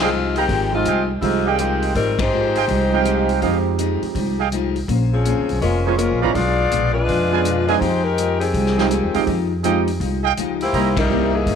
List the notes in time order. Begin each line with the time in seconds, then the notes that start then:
Already playing: C2
0.01 G#3 C4 D#4 F4
0.12 F3 G#3 D#4 G4
0.36 D#3 G#3 C4 G4 G#4 D#5 F5 A#5, open hi-hat
0.48 G#1 F3 G#3 D#4 G4, kick, open hi-hat
0.72 F3 G#3 C4 D#4 F4 G4
0.85 C2 F3 G#3 D#4 G4 G#4 D#5 F5 G5, closed hi-hat
1.20 C2 F3 G#3 C4 D#4 E4 F4 G4, kick, open hi-hat
1.45 D#3 G3 C4 G4 G#4 D#5 F5 G5
1.58 D#3 F3 G#3 C4 D#4 G4, closed hi-hat
1.82 open hi-hat
1.95 G#1 F3 G3 G#3 C4 D#4 G4 A#4, kick, open hi-hat
2.19 G#3 D#4 G4 C5, kick, ride
2.32 F3 G#3 D#4 G4
2.56 G#4 D#5 F5 G5, open hi-hat
2.68 C2 F3 G#3 D#4 G4, kick, open hi-hat
2.92 F3 G#3 C4 D#4 G4 D#5 F5 G5
3.05 F3 G#3 D#4 G4, closed hi-hat
3.29 open hi-hat
3.42 F2 F3 G#3 C4 D#4 G4 G#4 D#5 F5 G5, kick, open hi-hat
3.78 F3 G#3 D#4 G4, closed hi-hat
4.02 muted upright bass stroke, open hi-hat
4.15 C2 F3 G#3 D#4 G4, kick, open hi-hat
4.39 G#4 D#5 F5 G5
4.52 F3 G#3 D#4 G4, closed hi-hat
4.76 open hi-hat
4.88 A#1 A#3 C#4 G#4 C5, kick, open hi-hat
5.13 F3 C4 C#4 G#4
5.25 A#3 C#4 G#4 C5, closed hi-hat
5.38 C2
5.49 B1, open hi-hat
5.61 F1 G#3 A#3 C#4 F4 G#4 A#4 C5, kick, open hi-hat
5.85 F3 G#3 A#3 C4 C#4 F4 G#4 A#4 C5 C#5 G#5
5.97 G#3 A#3 C#4 F4 G#4 A#4 C5, closed hi-hat
6.11 A#1
6.21 G#1 F3 G#3 B3 C#4 D4 E4 F4 B4 C5 D5 F5 A#5
6.34 B1 B2 G#3 B3 D4 F4 G#4 D5, kick, open hi-hat
6.71 A#1 B2 G#3 D4 F4, closed hi-hat
6.94 G#3 D4 F4 B4
7.08 F2 B2 G#3 D4 F4, kick, open hi-hat
7.31 F3 B3 C#4 D4 G#4 B4 D5 F5 G#5
7.44 B2 G#3 D4 F4, closed hi-hat
7.67 F3 G#3 C4 D4 D#4 F4 G#4 B4 D#5 F5 G#5, open hi-hat
7.79 F2 F3 G#3 D#4 G4 C5, kick, open hi-hat
7.83 G4
8.03 G#3 D#4 G4 A#4
8.18 F3 G#3 D#4 G4, closed hi-hat
8.40 D#3 C4 G4 G#4, open hi-hat
8.54 C2 F3 G#3 D#4 G4, kick, open hi-hat
8.66 snare
8.78 F3 G#3 C4 D#4 G4 G#4 D#5 F5 G5, snare
8.91 F3 G#3 D#4 G4, closed hi-hat
9.03 D#2
9.14 E2 F3 G#3 C4 D#4 G4 G#4 D#5 F5 G5, open hi-hat
9.27 F2 F3 G#3 D#4 G4, kick, open hi-hat
9.63 F3 G#3 C4 D#4 G4 G#4 D#5 F5 G5, closed hi-hat
9.87 open hi-hat
10.00 C2 F3 G#3 D#4 G4, kick, open hi-hat
10.23 G#4 D#5 F5 G5
10.37 C#2 F3 G#3 D#4 G4, closed hi-hat
10.61 A#3 E4 G4 C5, open hi-hat
10.73 C2 C3 A#3 D#4 E4 C5 D#5 E5 A#5, kick, open hi-hat
10.97 G3 D#4 E4 A#4, kick, ride
11.10 C3 E3 A#3 C4 D#4 E4 G4
11.35 E3 A#3 D#4 G#4
11.46 G1 C3 A#3 D#4 E4, kick, open hi-hat